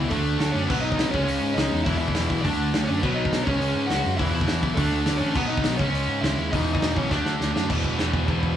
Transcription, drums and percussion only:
0.10 kick, open hi-hat
0.40 snare, open hi-hat
0.70 kick, crash
0.92 kick
0.99 snare, open hi-hat
1.14 kick
1.28 open hi-hat
1.58 snare, open hi-hat
1.86 kick, open hi-hat
2.08 kick
2.15 snare, open hi-hat
2.30 kick
2.45 kick, open hi-hat
2.74 snare, open hi-hat
3.03 kick, crash
3.25 kick
3.33 snare, open hi-hat
3.47 kick
3.62 open hi-hat
3.90 snare, open hi-hat
4.19 kick, open hi-hat
4.41 kick
4.48 snare, open hi-hat
4.63 kick
4.77 kick, open hi-hat
5.06 snare, open hi-hat
5.35 kick, crash
5.57 kick
5.64 snare, open hi-hat
5.79 kick
5.95 open hi-hat
6.24 snare, open hi-hat
6.53 kick, open hi-hat
6.75 kick
6.82 snare, open hi-hat
6.96 kick
7.11 kick, snare
7.26 snare
7.41 snare
7.56 snare
7.70 kick, crash
7.84 kick, crash
7.99 snare, crash
8.13 kick, crash
8.28 kick, crash
8.43 kick, crash

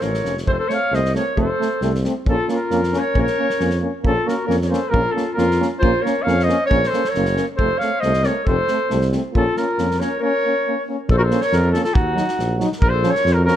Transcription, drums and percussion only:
0.01 snare
0.14 snare
0.25 snare
0.38 snare
0.47 kick
0.70 snare
0.94 snare
1.05 snare
1.15 snare
1.37 kick
1.62 snare
1.81 snare
1.95 snare
2.04 snare
2.26 kick
2.49 snare
2.71 snare
2.83 snare
2.94 snare
3.15 kick
3.27 snare
3.50 snare
3.60 snare
3.70 snare
4.04 kick
4.28 snare
4.50 snare
4.61 snare
4.73 snare
4.94 kick
5.17 snare
5.38 snare
5.51 snare
5.62 snare
5.83 kick
6.06 snare
6.28 snare
6.39 snare
6.49 snare
6.71 kick
6.84 snare
6.93 snare
7.04 snare
7.14 snare
7.25 snare
7.37 snare
7.59 kick
7.81 snare
8.02 snare
8.13 snare
8.24 snare
8.47 kick
8.68 snare
8.90 snare
9.01 snare
9.12 snare
9.35 kick
9.57 snare
9.78 snare
9.91 snare
10.01 snare
11.09 kick
11.31 snare
11.41 snare
11.52 snare
11.74 snare
11.85 snare
11.95 kick
12.17 snare
12.28 snare
12.39 snare
12.60 snare
12.72 snare
12.82 kick
13.03 snare
13.15 snare
13.26 snare
13.48 snare

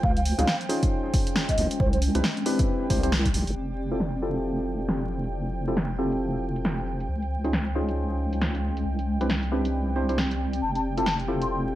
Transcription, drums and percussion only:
0.03 kick
0.17 closed hi-hat
0.25 open hi-hat
0.39 cross-stick, closed hi-hat
0.47 snare
0.61 closed hi-hat
0.70 open hi-hat
0.83 kick, closed hi-hat
1.14 kick, open hi-hat
1.27 closed hi-hat
1.36 snare
1.49 kick, closed hi-hat
1.58 open hi-hat
1.71 closed hi-hat
1.80 kick
1.93 closed hi-hat
2.02 open hi-hat
2.15 cross-stick, closed hi-hat
2.24 snare
2.37 closed hi-hat
2.46 cross-stick, open hi-hat
2.59 kick, closed hi-hat
2.90 kick, open hi-hat
3.03 closed hi-hat
3.12 snare
3.25 kick, closed hi-hat
3.34 open hi-hat
3.47 open hi-hat
3.69 closed hi-hat
3.91 closed hi-hat
4.00 snare
4.13 closed hi-hat
4.36 closed hi-hat
4.80 closed hi-hat
4.88 snare
5.02 closed hi-hat
5.24 closed hi-hat
5.46 closed hi-hat
5.68 closed hi-hat
5.77 snare
5.90 closed hi-hat
6.12 closed hi-hat
6.56 closed hi-hat
6.65 snare
6.78 closed hi-hat
7.00 closed hi-hat
7.22 closed hi-hat
7.44 closed hi-hat
7.53 snare
7.67 closed hi-hat
7.89 closed hi-hat
8.33 closed hi-hat
8.41 snare
8.55 closed hi-hat
8.77 closed hi-hat
8.99 closed hi-hat
9.21 closed hi-hat
9.30 snare
9.43 closed hi-hat
9.65 closed hi-hat
10.09 closed hi-hat
10.18 snare
10.31 closed hi-hat
10.53 closed hi-hat
10.75 closed hi-hat
10.98 closed hi-hat
11.06 snare
11.20 closed hi-hat
11.42 closed hi-hat

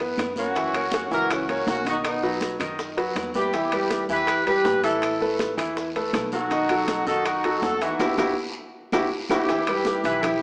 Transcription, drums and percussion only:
0.00 high bongo, high timbale, maracas
0.17 high bongo, low bongo, high conga, high timbale, short guiro, claves, maracas
0.36 high conga, short guiro, maracas
0.55 high bongo, high conga, high timbale, long guiro, maracas
0.73 high conga, high timbale, claves, maracas
0.92 high bongo, high conga, high timbale, short guiro, maracas
1.12 short guiro, maracas
1.30 high bongo, high conga, high timbale, long guiro, claves, maracas
1.48 high conga, high timbale, maracas
1.67 high bongo, low bongo, high conga, low timbale, short guiro, maracas
1.85 high conga, high timbale, short guiro, maracas
2.04 high bongo, high conga, high timbale, long guiro, claves, maracas
2.23 high bongo, high conga, maracas
2.41 high bongo, high conga, high timbale, short guiro, maracas
2.60 high bongo, high conga, high timbale, short guiro, claves, maracas
2.79 high bongo, high conga, long guiro, maracas
2.98 high bongo, high conga, high timbale, maracas
3.16 high bongo, low bongo, high conga, high timbale, short guiro, claves, maracas
3.34 high conga, short guiro, maracas
3.53 high bongo, high conga, high timbale, long guiro, maracas
3.72 high conga, high timbale, claves, maracas
3.90 high bongo, high conga, high timbale, short guiro, maracas
4.09 short guiro, maracas
4.27 high bongo, high conga, high timbale, long guiro, claves, maracas
4.46 high conga, high timbale, maracas
4.65 high bongo, low bongo, high conga, low timbale, short guiro, maracas
4.83 high timbale, short guiro, maracas
5.02 high bongo, high conga, high timbale, long guiro, claves, maracas
5.20 high bongo, high conga, maracas
5.39 high bongo, high conga, high timbale, short guiro, maracas
5.58 high bongo, high conga, high timbale, short guiro, claves, maracas
5.76 high bongo, high conga, long guiro, maracas
5.95 high bongo, high conga, high timbale, maracas
6.13 high bongo, low bongo, high conga, high timbale, low timbale, short guiro, claves, maracas
6.32 high conga, short guiro, maracas
6.50 high bongo, high conga, high timbale, long guiro, maracas
6.69 high conga, high timbale, claves, maracas
6.88 high bongo, high conga, high timbale, short guiro, maracas
7.07 short guiro, maracas
7.25 high bongo, high conga, high timbale, long guiro, claves, maracas
7.44 high conga, high timbale, maracas
7.62 high bongo, low bongo, high conga, low timbale, short guiro, maracas
7.81 high timbale, short guiro, maracas
7.99 high bongo, high conga, high timbale, long guiro, claves, maracas
8.18 high bongo, high conga, high timbale, long guiro, claves, maracas
8.92 high bongo, high conga, high timbale, long guiro, claves, maracas
9.29 high bongo, high conga, high timbale, claves, maracas
9.48 high bongo, high conga, high timbale, long guiro, maracas
9.67 high conga, high timbale, claves
9.85 high bongo, high conga, low timbale, short guiro, maracas
10.04 high bongo, high timbale, short guiro, maracas
10.23 high bongo, high conga, low conga, high timbale, long guiro, claves, maracas

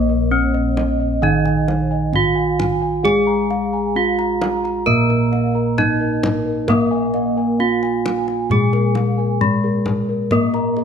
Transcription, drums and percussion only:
0.54 kendang slap
0.77 kendang high
1.23 kendang low
1.45 kendang slap
1.68 kendang slap, kendang high
2.13 kendang low
2.60 kendang slap, kendang high, kendang low
3.05 kendang low
3.51 kendang slap
4.19 kendang slap
4.42 kendang high
4.65 kendang slap
4.87 kendang low
5.10 kendang slap
5.33 kendang slap
5.78 kendang high, kendang low
6.23 kendang slap, kendang high, kendang low
6.68 kendang high, kendang low
7.14 kendang slap
7.83 kendang slap
8.06 kendang high
8.28 kendang slap
8.51 kendang low
8.73 kendang slap
8.95 kendang slap, kendang high
9.41 kendang low
9.86 kendang slap, kendang high, kendang low
10.31 kendang low
10.54 kendang slap
10.77 kendang slap

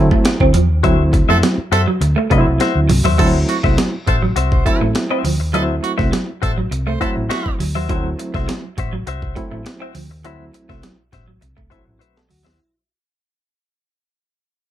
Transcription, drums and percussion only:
0.11 kick
0.25 snare, closed hi-hat
0.40 kick
0.54 closed hi-hat
0.84 kick, closed hi-hat
1.13 kick, closed hi-hat
1.30 snare
1.43 snare, closed hi-hat
1.73 snare, closed hi-hat
2.01 closed hi-hat
2.31 kick, closed hi-hat
2.60 snare, closed hi-hat
2.89 mid tom, open hi-hat
3.06 floor tom
3.19 kick, closed hi-hat, crash
3.49 closed hi-hat
3.64 kick, snare
3.78 snare, closed hi-hat
4.07 kick, closed hi-hat
4.36 closed hi-hat
4.52 kick
4.66 kick, closed hi-hat
4.95 snare, closed hi-hat
5.25 open hi-hat
5.54 closed hi-hat
5.84 closed hi-hat
5.99 kick, snare
6.13 snare, closed hi-hat
6.43 kick, closed hi-hat
6.72 closed hi-hat
7.01 kick, closed hi-hat
7.31 snare, closed hi-hat
7.46 kick
7.60 open hi-hat
7.89 kick, closed hi-hat
8.19 closed hi-hat
8.34 kick, snare
8.49 snare, closed hi-hat
8.78 kick, closed hi-hat
9.07 closed hi-hat
9.22 kick
9.36 kick, closed hi-hat
9.66 snare, closed hi-hat
9.95 open hi-hat
10.25 closed hi-hat
10.54 closed hi-hat
10.70 kick, snare
10.83 snare, closed hi-hat
11.13 kick, snare, closed hi-hat
11.42 closed hi-hat
11.58 kick
11.72 kick, closed hi-hat
12.01 closed hi-hat
12.17 snare
12.31 open hi-hat
12.47 snare

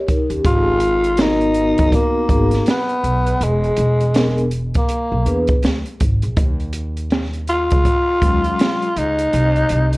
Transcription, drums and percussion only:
0.08 kick, closed hi-hat
0.30 closed hi-hat
0.44 kick, closed hi-hat
0.80 closed hi-hat
1.04 closed hi-hat
1.17 snare, closed hi-hat
1.41 closed hi-hat
1.54 closed hi-hat
1.78 kick, closed hi-hat
1.92 kick, closed hi-hat
2.29 kick, closed hi-hat
2.51 snare, closed hi-hat
2.66 snare, closed hi-hat
2.89 closed hi-hat
3.04 closed hi-hat
3.26 closed hi-hat
3.41 closed hi-hat
3.64 closed hi-hat
3.77 closed hi-hat
4.00 closed hi-hat
4.14 snare, closed hi-hat
4.38 closed hi-hat
4.51 closed hi-hat
4.74 kick, closed hi-hat
4.89 closed hi-hat
5.26 closed hi-hat
5.47 kick, closed hi-hat
5.63 snare, closed hi-hat
5.85 closed hi-hat
6.00 kick, closed hi-hat
6.22 closed hi-hat
6.37 kick, closed hi-hat
6.60 closed hi-hat
6.73 closed hi-hat
6.97 closed hi-hat
7.10 snare, closed hi-hat
7.33 closed hi-hat
7.47 closed hi-hat
7.70 kick, closed hi-hat
7.85 kick, closed hi-hat
8.22 kick, closed hi-hat
8.44 closed hi-hat
8.59 snare, closed hi-hat
8.82 closed hi-hat
8.96 closed hi-hat
9.19 closed hi-hat
9.33 closed hi-hat
9.56 closed hi-hat
9.69 closed hi-hat
9.93 closed hi-hat

